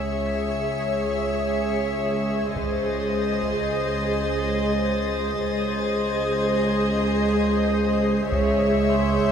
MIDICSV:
0, 0, Header, 1, 10, 480
1, 0, Start_track
1, 0, Key_signature, 4, "minor"
1, 0, Tempo, 576923
1, 2128, Time_signature, 5, 2, 24, 8
1, 7753, End_track
2, 0, Start_track
2, 0, Title_t, "Violin section"
2, 0, Program_c, 0, 48
2, 2131, Note_on_c, 0, 87, 28
2, 2133, Note_on_c, 0, 93, 29
2, 5170, Note_off_c, 0, 93, 0
2, 5170, Note_on_c, 0, 92, 29
2, 6177, Note_off_c, 0, 92, 0
2, 6656, Note_off_c, 0, 87, 0
2, 6931, Note_on_c, 0, 85, 37
2, 7407, Note_on_c, 0, 91, 37
2, 7753, Note_off_c, 0, 85, 0
2, 7753, Note_off_c, 0, 91, 0
2, 7753, End_track
3, 0, Start_track
3, 0, Title_t, "Harp"
3, 0, Program_c, 1, 46
3, 0, Note_on_c, 1, 78, 24
3, 0, Note_on_c, 1, 90, 24
3, 216, Note_on_c, 1, 92, 26
3, 1410, Note_on_c, 1, 97, 27
3, 2012, Note_off_c, 1, 78, 0
3, 2016, Note_off_c, 1, 90, 0
3, 2849, Note_off_c, 1, 97, 0
3, 3461, Note_off_c, 1, 92, 0
3, 7395, Note_on_c, 1, 73, 32
3, 7398, Note_on_c, 1, 84, 36
3, 7753, Note_off_c, 1, 73, 0
3, 7753, Note_off_c, 1, 84, 0
3, 7753, End_track
4, 0, Start_track
4, 0, Title_t, "Violin section"
4, 0, Program_c, 2, 48
4, 0, Note_on_c, 2, 76, 36
4, 2092, Note_off_c, 2, 76, 0
4, 2138, Note_on_c, 2, 75, 43
4, 4505, Note_off_c, 2, 75, 0
4, 4515, Note_on_c, 2, 75, 45
4, 6888, Note_off_c, 2, 75, 0
4, 6923, Note_on_c, 2, 76, 53
4, 7753, Note_off_c, 2, 76, 0
4, 7753, End_track
5, 0, Start_track
5, 0, Title_t, "Ambient pad"
5, 0, Program_c, 3, 92
5, 0, Note_on_c, 3, 68, 49
5, 0, Note_on_c, 3, 73, 49
5, 0, Note_on_c, 3, 76, 46
5, 2092, Note_off_c, 3, 68, 0
5, 2092, Note_off_c, 3, 76, 0
5, 2095, Note_off_c, 3, 73, 0
5, 2121, Note_on_c, 3, 75, 50
5, 2122, Note_on_c, 3, 68, 52
5, 2122, Note_on_c, 3, 72, 49
5, 4492, Note_off_c, 3, 68, 0
5, 4523, Note_off_c, 3, 75, 0
5, 4525, Note_off_c, 3, 72, 0
5, 4533, Note_on_c, 3, 75, 50
5, 4535, Note_on_c, 3, 72, 52
5, 4536, Note_on_c, 3, 68, 52
5, 6897, Note_off_c, 3, 75, 0
5, 6898, Note_off_c, 3, 72, 0
5, 6899, Note_off_c, 3, 68, 0
5, 6914, Note_on_c, 3, 76, 56
5, 6916, Note_on_c, 3, 68, 53
5, 6916, Note_on_c, 3, 73, 56
5, 7753, Note_off_c, 3, 68, 0
5, 7753, Note_off_c, 3, 73, 0
5, 7753, Note_off_c, 3, 76, 0
5, 7753, End_track
6, 0, Start_track
6, 0, Title_t, "Violin section"
6, 0, Program_c, 4, 48
6, 0, Note_on_c, 4, 73, 32
6, 2099, Note_off_c, 4, 73, 0
6, 2126, Note_on_c, 4, 72, 35
6, 4494, Note_off_c, 4, 72, 0
6, 4527, Note_on_c, 4, 72, 43
6, 6894, Note_off_c, 4, 72, 0
6, 6924, Note_on_c, 4, 73, 45
6, 7753, Note_off_c, 4, 73, 0
6, 7753, End_track
7, 0, Start_track
7, 0, Title_t, "Viola section"
7, 0, Program_c, 5, 48
7, 0, Note_on_c, 5, 68, 36
7, 2097, Note_off_c, 5, 68, 0
7, 2126, Note_on_c, 5, 68, 41
7, 4494, Note_off_c, 5, 68, 0
7, 4526, Note_on_c, 5, 68, 50
7, 6894, Note_off_c, 5, 68, 0
7, 6926, Note_on_c, 5, 68, 55
7, 7753, Note_off_c, 5, 68, 0
7, 7753, End_track
8, 0, Start_track
8, 0, Title_t, "Cello section"
8, 0, Program_c, 6, 48
8, 0, Note_on_c, 6, 37, 36
8, 2095, Note_off_c, 6, 37, 0
8, 2133, Note_on_c, 6, 37, 42
8, 4497, Note_off_c, 6, 37, 0
8, 4525, Note_on_c, 6, 37, 50
8, 6893, Note_off_c, 6, 37, 0
8, 6925, Note_on_c, 6, 37, 55
8, 7753, Note_off_c, 6, 37, 0
8, 7753, End_track
9, 0, Start_track
9, 0, Title_t, "Double bass section"
9, 0, Program_c, 7, 48
9, 0, Note_on_c, 7, 37, 38
9, 2098, Note_off_c, 7, 37, 0
9, 2130, Note_on_c, 7, 37, 43
9, 4496, Note_off_c, 7, 37, 0
9, 4524, Note_on_c, 7, 37, 46
9, 6893, Note_off_c, 7, 37, 0
9, 6922, Note_on_c, 7, 37, 51
9, 7753, Note_off_c, 7, 37, 0
9, 7753, End_track
10, 0, Start_track
10, 0, Title_t, "Taiko and cinematic ensemble drums"
10, 2130, Note_on_c, 9, 41, 44
10, 2213, Note_off_c, 9, 41, 0
10, 2849, Note_on_c, 9, 41, 26
10, 2932, Note_off_c, 9, 41, 0
10, 6922, Note_on_c, 9, 41, 49
10, 7006, Note_off_c, 9, 41, 0
10, 7644, Note_on_c, 9, 41, 28
10, 7728, Note_off_c, 9, 41, 0
10, 7753, End_track
0, 0, End_of_file